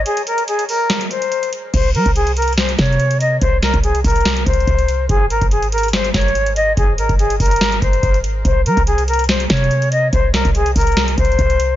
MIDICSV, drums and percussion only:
0, 0, Header, 1, 2, 480
1, 0, Start_track
1, 0, Tempo, 419580
1, 66, Time_signature, 4, 2, 24, 8
1, 13455, End_track
2, 0, Start_track
2, 0, Title_t, "Drums"
2, 66, Note_on_c, 9, 42, 89
2, 181, Note_off_c, 9, 42, 0
2, 194, Note_on_c, 9, 42, 67
2, 306, Note_off_c, 9, 42, 0
2, 306, Note_on_c, 9, 42, 84
2, 421, Note_off_c, 9, 42, 0
2, 434, Note_on_c, 9, 42, 59
2, 546, Note_off_c, 9, 42, 0
2, 546, Note_on_c, 9, 42, 88
2, 661, Note_off_c, 9, 42, 0
2, 674, Note_on_c, 9, 42, 66
2, 787, Note_on_c, 9, 46, 84
2, 788, Note_off_c, 9, 42, 0
2, 901, Note_off_c, 9, 46, 0
2, 1026, Note_on_c, 9, 42, 85
2, 1027, Note_on_c, 9, 38, 112
2, 1141, Note_off_c, 9, 38, 0
2, 1141, Note_off_c, 9, 42, 0
2, 1154, Note_on_c, 9, 42, 68
2, 1267, Note_off_c, 9, 42, 0
2, 1267, Note_on_c, 9, 42, 67
2, 1381, Note_off_c, 9, 42, 0
2, 1394, Note_on_c, 9, 42, 56
2, 1507, Note_off_c, 9, 42, 0
2, 1507, Note_on_c, 9, 42, 63
2, 1621, Note_off_c, 9, 42, 0
2, 1634, Note_on_c, 9, 42, 53
2, 1746, Note_off_c, 9, 42, 0
2, 1746, Note_on_c, 9, 42, 85
2, 1861, Note_off_c, 9, 42, 0
2, 1987, Note_on_c, 9, 36, 115
2, 1987, Note_on_c, 9, 42, 89
2, 1987, Note_on_c, 9, 49, 97
2, 2101, Note_off_c, 9, 36, 0
2, 2101, Note_off_c, 9, 42, 0
2, 2101, Note_off_c, 9, 49, 0
2, 2227, Note_on_c, 9, 42, 80
2, 2341, Note_off_c, 9, 42, 0
2, 2354, Note_on_c, 9, 36, 91
2, 2354, Note_on_c, 9, 42, 56
2, 2466, Note_off_c, 9, 42, 0
2, 2466, Note_on_c, 9, 42, 87
2, 2468, Note_off_c, 9, 36, 0
2, 2581, Note_off_c, 9, 42, 0
2, 2594, Note_on_c, 9, 42, 62
2, 2706, Note_off_c, 9, 42, 0
2, 2706, Note_on_c, 9, 42, 78
2, 2770, Note_off_c, 9, 42, 0
2, 2770, Note_on_c, 9, 42, 65
2, 2833, Note_off_c, 9, 42, 0
2, 2833, Note_on_c, 9, 42, 55
2, 2890, Note_off_c, 9, 42, 0
2, 2890, Note_on_c, 9, 42, 46
2, 2946, Note_off_c, 9, 42, 0
2, 2946, Note_on_c, 9, 42, 80
2, 2947, Note_on_c, 9, 38, 109
2, 3061, Note_off_c, 9, 38, 0
2, 3061, Note_off_c, 9, 42, 0
2, 3074, Note_on_c, 9, 42, 65
2, 3187, Note_off_c, 9, 42, 0
2, 3187, Note_on_c, 9, 36, 92
2, 3187, Note_on_c, 9, 38, 89
2, 3187, Note_on_c, 9, 42, 68
2, 3267, Note_off_c, 9, 42, 0
2, 3267, Note_on_c, 9, 42, 55
2, 3301, Note_off_c, 9, 36, 0
2, 3302, Note_off_c, 9, 38, 0
2, 3347, Note_off_c, 9, 42, 0
2, 3347, Note_on_c, 9, 42, 41
2, 3427, Note_off_c, 9, 42, 0
2, 3427, Note_on_c, 9, 42, 60
2, 3541, Note_off_c, 9, 42, 0
2, 3554, Note_on_c, 9, 42, 54
2, 3667, Note_off_c, 9, 42, 0
2, 3667, Note_on_c, 9, 42, 87
2, 3781, Note_off_c, 9, 42, 0
2, 3907, Note_on_c, 9, 36, 115
2, 3907, Note_on_c, 9, 42, 90
2, 4021, Note_off_c, 9, 36, 0
2, 4021, Note_off_c, 9, 42, 0
2, 4147, Note_on_c, 9, 38, 96
2, 4147, Note_on_c, 9, 42, 79
2, 4262, Note_off_c, 9, 38, 0
2, 4262, Note_off_c, 9, 42, 0
2, 4274, Note_on_c, 9, 36, 91
2, 4274, Note_on_c, 9, 42, 57
2, 4387, Note_off_c, 9, 42, 0
2, 4387, Note_on_c, 9, 42, 83
2, 4389, Note_off_c, 9, 36, 0
2, 4502, Note_off_c, 9, 42, 0
2, 4515, Note_on_c, 9, 42, 60
2, 4626, Note_on_c, 9, 36, 108
2, 4627, Note_off_c, 9, 42, 0
2, 4627, Note_on_c, 9, 42, 77
2, 4627, Note_on_c, 9, 46, 84
2, 4691, Note_off_c, 9, 42, 0
2, 4691, Note_on_c, 9, 42, 65
2, 4740, Note_off_c, 9, 36, 0
2, 4742, Note_off_c, 9, 46, 0
2, 4754, Note_off_c, 9, 42, 0
2, 4754, Note_on_c, 9, 42, 56
2, 4811, Note_off_c, 9, 42, 0
2, 4811, Note_on_c, 9, 42, 47
2, 4867, Note_off_c, 9, 42, 0
2, 4867, Note_on_c, 9, 38, 109
2, 4867, Note_on_c, 9, 42, 82
2, 4981, Note_off_c, 9, 42, 0
2, 4982, Note_off_c, 9, 38, 0
2, 4994, Note_on_c, 9, 42, 66
2, 5107, Note_off_c, 9, 42, 0
2, 5107, Note_on_c, 9, 36, 90
2, 5107, Note_on_c, 9, 42, 68
2, 5187, Note_off_c, 9, 42, 0
2, 5187, Note_on_c, 9, 42, 55
2, 5222, Note_off_c, 9, 36, 0
2, 5267, Note_off_c, 9, 42, 0
2, 5267, Note_on_c, 9, 42, 42
2, 5346, Note_on_c, 9, 36, 89
2, 5347, Note_off_c, 9, 42, 0
2, 5347, Note_on_c, 9, 42, 60
2, 5460, Note_off_c, 9, 36, 0
2, 5461, Note_off_c, 9, 42, 0
2, 5474, Note_on_c, 9, 42, 52
2, 5587, Note_off_c, 9, 42, 0
2, 5587, Note_on_c, 9, 42, 86
2, 5701, Note_off_c, 9, 42, 0
2, 5827, Note_on_c, 9, 36, 113
2, 5827, Note_on_c, 9, 42, 85
2, 5941, Note_off_c, 9, 36, 0
2, 5941, Note_off_c, 9, 42, 0
2, 6067, Note_on_c, 9, 42, 81
2, 6181, Note_off_c, 9, 42, 0
2, 6194, Note_on_c, 9, 36, 91
2, 6194, Note_on_c, 9, 42, 59
2, 6307, Note_off_c, 9, 42, 0
2, 6307, Note_on_c, 9, 42, 85
2, 6309, Note_off_c, 9, 36, 0
2, 6422, Note_off_c, 9, 42, 0
2, 6434, Note_on_c, 9, 42, 62
2, 6547, Note_off_c, 9, 42, 0
2, 6547, Note_on_c, 9, 42, 79
2, 6611, Note_off_c, 9, 42, 0
2, 6611, Note_on_c, 9, 42, 68
2, 6674, Note_off_c, 9, 42, 0
2, 6674, Note_on_c, 9, 42, 57
2, 6731, Note_off_c, 9, 42, 0
2, 6731, Note_on_c, 9, 42, 47
2, 6787, Note_off_c, 9, 42, 0
2, 6787, Note_on_c, 9, 42, 83
2, 6788, Note_on_c, 9, 38, 109
2, 6902, Note_off_c, 9, 38, 0
2, 6902, Note_off_c, 9, 42, 0
2, 6914, Note_on_c, 9, 42, 66
2, 7027, Note_off_c, 9, 42, 0
2, 7027, Note_on_c, 9, 36, 92
2, 7027, Note_on_c, 9, 42, 67
2, 7028, Note_on_c, 9, 38, 91
2, 7107, Note_off_c, 9, 42, 0
2, 7107, Note_on_c, 9, 42, 54
2, 7142, Note_off_c, 9, 36, 0
2, 7142, Note_off_c, 9, 38, 0
2, 7187, Note_off_c, 9, 42, 0
2, 7187, Note_on_c, 9, 42, 39
2, 7267, Note_off_c, 9, 42, 0
2, 7267, Note_on_c, 9, 42, 61
2, 7381, Note_off_c, 9, 42, 0
2, 7395, Note_on_c, 9, 42, 54
2, 7507, Note_off_c, 9, 42, 0
2, 7507, Note_on_c, 9, 42, 90
2, 7622, Note_off_c, 9, 42, 0
2, 7747, Note_on_c, 9, 36, 117
2, 7747, Note_on_c, 9, 42, 85
2, 7861, Note_off_c, 9, 36, 0
2, 7861, Note_off_c, 9, 42, 0
2, 7987, Note_on_c, 9, 42, 79
2, 8101, Note_off_c, 9, 42, 0
2, 8114, Note_on_c, 9, 36, 93
2, 8114, Note_on_c, 9, 42, 56
2, 8227, Note_off_c, 9, 42, 0
2, 8227, Note_on_c, 9, 42, 85
2, 8228, Note_off_c, 9, 36, 0
2, 8341, Note_off_c, 9, 42, 0
2, 8354, Note_on_c, 9, 42, 62
2, 8465, Note_on_c, 9, 36, 101
2, 8466, Note_off_c, 9, 42, 0
2, 8466, Note_on_c, 9, 42, 67
2, 8466, Note_on_c, 9, 46, 85
2, 8530, Note_off_c, 9, 42, 0
2, 8530, Note_on_c, 9, 42, 66
2, 8580, Note_off_c, 9, 36, 0
2, 8581, Note_off_c, 9, 46, 0
2, 8594, Note_off_c, 9, 42, 0
2, 8594, Note_on_c, 9, 42, 65
2, 8650, Note_off_c, 9, 42, 0
2, 8650, Note_on_c, 9, 42, 67
2, 8707, Note_off_c, 9, 42, 0
2, 8707, Note_on_c, 9, 38, 111
2, 8707, Note_on_c, 9, 42, 82
2, 8821, Note_off_c, 9, 42, 0
2, 8822, Note_off_c, 9, 38, 0
2, 8834, Note_on_c, 9, 42, 64
2, 8947, Note_off_c, 9, 42, 0
2, 8947, Note_on_c, 9, 36, 90
2, 8947, Note_on_c, 9, 42, 69
2, 9061, Note_off_c, 9, 36, 0
2, 9061, Note_off_c, 9, 42, 0
2, 9074, Note_on_c, 9, 42, 52
2, 9186, Note_on_c, 9, 36, 89
2, 9187, Note_off_c, 9, 42, 0
2, 9187, Note_on_c, 9, 42, 61
2, 9300, Note_off_c, 9, 36, 0
2, 9301, Note_off_c, 9, 42, 0
2, 9314, Note_on_c, 9, 42, 54
2, 9427, Note_off_c, 9, 42, 0
2, 9427, Note_on_c, 9, 42, 89
2, 9541, Note_off_c, 9, 42, 0
2, 9667, Note_on_c, 9, 36, 115
2, 9667, Note_on_c, 9, 42, 87
2, 9781, Note_off_c, 9, 36, 0
2, 9781, Note_off_c, 9, 42, 0
2, 9907, Note_on_c, 9, 42, 81
2, 10021, Note_off_c, 9, 42, 0
2, 10034, Note_on_c, 9, 36, 96
2, 10034, Note_on_c, 9, 42, 56
2, 10147, Note_off_c, 9, 42, 0
2, 10147, Note_on_c, 9, 42, 84
2, 10148, Note_off_c, 9, 36, 0
2, 10261, Note_off_c, 9, 42, 0
2, 10274, Note_on_c, 9, 42, 62
2, 10387, Note_off_c, 9, 42, 0
2, 10387, Note_on_c, 9, 42, 78
2, 10450, Note_off_c, 9, 42, 0
2, 10450, Note_on_c, 9, 42, 67
2, 10514, Note_off_c, 9, 42, 0
2, 10514, Note_on_c, 9, 42, 56
2, 10570, Note_off_c, 9, 42, 0
2, 10570, Note_on_c, 9, 42, 45
2, 10626, Note_off_c, 9, 42, 0
2, 10626, Note_on_c, 9, 42, 82
2, 10627, Note_on_c, 9, 38, 110
2, 10741, Note_off_c, 9, 38, 0
2, 10741, Note_off_c, 9, 42, 0
2, 10754, Note_on_c, 9, 42, 66
2, 10866, Note_off_c, 9, 42, 0
2, 10866, Note_on_c, 9, 42, 67
2, 10867, Note_on_c, 9, 36, 90
2, 10867, Note_on_c, 9, 38, 92
2, 10946, Note_off_c, 9, 42, 0
2, 10946, Note_on_c, 9, 42, 55
2, 10981, Note_off_c, 9, 36, 0
2, 10982, Note_off_c, 9, 38, 0
2, 11026, Note_off_c, 9, 42, 0
2, 11026, Note_on_c, 9, 42, 41
2, 11106, Note_off_c, 9, 42, 0
2, 11106, Note_on_c, 9, 42, 62
2, 11221, Note_off_c, 9, 42, 0
2, 11234, Note_on_c, 9, 42, 54
2, 11347, Note_off_c, 9, 42, 0
2, 11347, Note_on_c, 9, 42, 88
2, 11461, Note_off_c, 9, 42, 0
2, 11587, Note_on_c, 9, 36, 112
2, 11587, Note_on_c, 9, 42, 85
2, 11701, Note_off_c, 9, 36, 0
2, 11701, Note_off_c, 9, 42, 0
2, 11827, Note_on_c, 9, 38, 96
2, 11827, Note_on_c, 9, 42, 80
2, 11941, Note_off_c, 9, 38, 0
2, 11941, Note_off_c, 9, 42, 0
2, 11954, Note_on_c, 9, 36, 91
2, 11954, Note_on_c, 9, 42, 58
2, 12067, Note_off_c, 9, 42, 0
2, 12067, Note_on_c, 9, 42, 85
2, 12068, Note_off_c, 9, 36, 0
2, 12181, Note_off_c, 9, 42, 0
2, 12194, Note_on_c, 9, 42, 61
2, 12306, Note_off_c, 9, 42, 0
2, 12306, Note_on_c, 9, 36, 107
2, 12306, Note_on_c, 9, 42, 78
2, 12306, Note_on_c, 9, 46, 84
2, 12370, Note_off_c, 9, 42, 0
2, 12370, Note_on_c, 9, 42, 67
2, 12420, Note_off_c, 9, 36, 0
2, 12421, Note_off_c, 9, 46, 0
2, 12434, Note_off_c, 9, 42, 0
2, 12434, Note_on_c, 9, 42, 56
2, 12490, Note_off_c, 9, 42, 0
2, 12490, Note_on_c, 9, 42, 45
2, 12547, Note_off_c, 9, 42, 0
2, 12547, Note_on_c, 9, 38, 108
2, 12547, Note_on_c, 9, 42, 84
2, 12661, Note_off_c, 9, 42, 0
2, 12662, Note_off_c, 9, 38, 0
2, 12674, Note_on_c, 9, 42, 63
2, 12787, Note_off_c, 9, 42, 0
2, 12787, Note_on_c, 9, 36, 89
2, 12787, Note_on_c, 9, 42, 70
2, 12867, Note_off_c, 9, 42, 0
2, 12867, Note_on_c, 9, 42, 52
2, 12902, Note_off_c, 9, 36, 0
2, 12947, Note_off_c, 9, 42, 0
2, 12947, Note_on_c, 9, 42, 41
2, 13026, Note_on_c, 9, 36, 91
2, 13027, Note_off_c, 9, 42, 0
2, 13027, Note_on_c, 9, 42, 62
2, 13140, Note_off_c, 9, 36, 0
2, 13141, Note_off_c, 9, 42, 0
2, 13154, Note_on_c, 9, 42, 54
2, 13267, Note_off_c, 9, 42, 0
2, 13267, Note_on_c, 9, 42, 90
2, 13381, Note_off_c, 9, 42, 0
2, 13455, End_track
0, 0, End_of_file